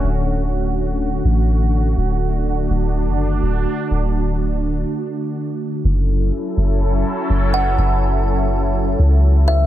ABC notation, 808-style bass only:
X:1
M:4/4
L:1/16
Q:1/4=124
K:F#phr
V:1 name="808-style bass" clef=bass
D,,,8- D,,,2 A,,,6 | D,,,6 D,,,3 F,,,3 D,,,2 z2 | D,,,8 z8 | F,,,4 z2 F,,,4 z2 F,,,4 |
F,,,8- F,,,2 C,,6 |]